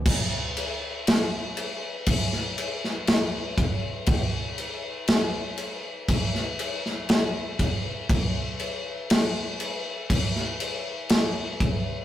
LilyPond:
\new DrumStaff \with { instrumentName = "Drums" } \drummode { \time 4/4 \tempo 4 = 60 <cymc bd>8 cymc8 <cymc sn>8 cymc8 <cymc bd>16 sn16 cymc16 sn16 <cymc sn>8 <cymc bd>8 | <cymc bd>8 cymc8 <cymc sn>8 cymc8 <cymc bd>16 sn16 cymc16 sn16 <cymc sn>8 <cymc bd>8 | <cymc bd>8 cymc8 <cymc sn>8 cymc8 <cymc bd>16 sn16 cymc8 <cymc sn>8 <cymc bd>8 | }